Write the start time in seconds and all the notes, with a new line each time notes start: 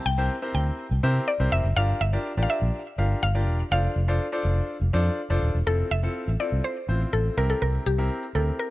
0.06 C2 G5
0.18 C4 E4 G4 A#4 C5
0.42 C4 E4 G4 A#4 C5
0.55 D2 G5
0.91 C2
1.03 C3 C4 E4 G4 A#4 C5
1.28 D5
1.40 C2 C4 E4 G4 A#4 C5
1.52 F1 E5
1.64 F#1
1.76 G1 D4 F4 G4 A#4 D5 F5
2.01 G1 E5
2.13 D4 F4 G4 A#4 D5
2.37 A1 D4 F4 G4 A#4 D5
2.43 F5
2.50 E5
2.62 A#1
2.98 G1 D4 F4 G4 A#4 F5
3.23 G1 F5
3.35 D4 F4 G4 A#4 D5
3.47 E1
3.71 F1 D4 F4 A4 C5 D5 F5
3.96 F1
4.08 D4 F4 A4 C5 D5
4.32 D4 F4 A4 C5 D5
4.45 F1
4.81 F1
4.93 F2 D4 F4 A4 C5 D5
5.30 F1 D4 F4 A4 C5 D5
5.42 D#1
5.55 E1
5.66 F1 C4 E4 F4 A4
5.91 F1 E5
6.03 C4 E4 F4 A4
6.28 A1
6.40 C4 E4 F4 A4 D5
6.52 C2
6.64 C5
6.88 A1 C4 E4 F4 C5
7.13 A1 A4
7.37 C2 C4 E4 G4 A#4
7.50 A4
7.62 C2 A#4
7.86 C2 G4
7.98 C4 E4 G4 A#4
8.35 D2 C4 E4 G4 A4 A#4
8.59 A#4